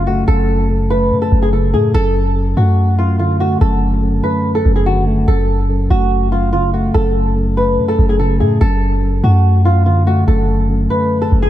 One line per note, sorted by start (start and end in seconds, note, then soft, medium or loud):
0.00 0.24 F#1 loud
0.00 0.28 F#2 medium
0.00 0.90 C#3 medium
0.00 0.07 A3 medium
0.07 0.89 A3 medium
0.07 0.24 F#4 medium
0.28 1.13 F#1 loud
0.28 0.68 F#2 loud
0.28 0.67 A4 loud
0.69 1.31 F#2 medium
0.90 1.73 A3 medium
0.90 1.20 B4 medium
1.11 1.31 C#3 loud
1.22 1.39 A4 medium
1.32 1.75 F#1 loud
1.32 1.93 F#2 medium
1.42 1.51 G#4 medium
1.53 1.95 C#3 medium
1.53 1.70 A4 medium
1.74 1.93 A2 loud
1.74 1.95 A3 medium
1.74 1.91 G#4 medium
1.94 2.54 F#1 loud
1.94 2.35 F#2 loud
1.94 2.34 A4 loud
2.36 2.97 F#2 medium
2.57 3.57 F#2 loud
2.57 3.39 A3 medium
2.57 2.96 F#4 medium
2.98 3.60 F#2 medium
2.98 3.16 F4 medium
3.19 4.24 D3 medium
3.19 3.37 F4 medium
3.40 4.23 A3 medium
3.40 3.58 F#4 medium
3.61 4.21 F#1 loud
3.61 4.02 F#2 medium
3.61 4.00 A4 loud
4.03 4.64 F#2 medium
4.23 5.06 A3 medium
4.23 4.53 B4 medium
4.55 4.72 A4 medium
4.65 5.25 F#1 loud
4.65 5.27 F#2 medium
4.76 4.84 G#4 medium
4.86 5.28 D3 medium
4.86 5.04 F#4 medium
5.07 5.28 A3 medium
5.28 5.88 F#1 loud
5.28 5.68 F#2 medium
5.28 5.67 A4 loud
5.70 6.31 F#2 medium
5.90 6.90 F#1 loud
5.90 6.73 A3 medium
5.90 6.30 F#4 medium
6.32 6.93 F#2 medium
6.32 6.49 F4 medium
6.53 7.57 C#3 medium
6.53 6.70 F4 medium
6.74 7.56 A3 medium
6.74 6.91 F#4 medium
6.94 7.79 F#1 loud
6.94 7.35 F#2 medium
6.94 7.34 A4 loud
7.36 7.97 F#2 medium
7.57 8.39 A3 medium
7.57 7.86 B4 medium
7.78 7.98 C#3 loud
7.88 8.06 A4 medium
7.99 8.42 F#1 loud
7.99 8.60 F#2 medium
8.09 8.18 G#4 medium
8.19 8.61 C#3 medium
8.19 8.37 A4 medium
8.40 8.60 A2 loud
8.40 8.61 A3 medium
8.40 8.58 G#4 medium
8.61 9.21 F#1 loud
8.61 9.01 F#2 loud
8.61 9.00 A4 loud
9.03 9.64 F#2 medium
9.24 10.24 F#2 loud
9.24 10.06 A3 medium
9.24 9.63 F#4 medium
9.65 10.27 F#2 medium
9.65 9.83 F4 medium
9.86 10.90 D3 medium
9.86 10.03 F4 medium
10.07 10.89 A3 medium
10.07 10.24 F#4 medium
10.28 10.88 F#1 loud
10.28 10.68 F#2 medium
10.28 10.67 A4 medium
10.70 11.31 F#2 medium
10.90 11.50 A3 medium
10.90 11.20 B4 medium
11.22 11.39 A4 medium
11.32 11.50 F#1 loud
11.32 11.50 F#2 medium
11.42 11.50 G#4 medium